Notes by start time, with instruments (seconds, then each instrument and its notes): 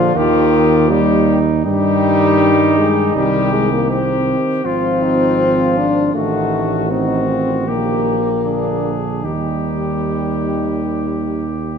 Already playing: tuba A#1, trombone D3, french horn F3, trumpet F4, flugelhorn F4
0.16 tuba D#2, french horn D#3, trombone D#3, trumpet G4
0.90 trombone D#3, french horn G3, flugelhorn D#4, trumpet G4
1.65 tuba G2, trombone D#3, french horn G3, flugelhorn D#4, trumpet G4
2.77 french horn G#3
3.15 tuba C2, trombone D#3, french horn G3, trumpet G4
3.52 french horn G#3
3.73 french horn A#3
3.90 trombone D#3, french horn C4, trumpet G4
4.65 tuba G#1, trombone F3, french horn C4, trumpet F4, flugelhorn F4
5.02 flugelhorn D#4
5.41 flugelhorn F4
5.78 french horn D4
6.14 tuba A1, trombone D#3, french horn A3, trumpet F#4, flugelhorn F#4
6.90 trombone D#3, french horn C4, flugelhorn D#4, trumpet F#4
7.29 flugelhorn F4
7.67 tuba A#1, trombone D#3, french horn A#3, flugelhorn G4, trumpet G4
8.44 trombone D3, flugelhorn D4, trumpet G#4
9.24 tuba D#2, trombone D#3, french horn G3, flugelhorn D#4, trumpet G4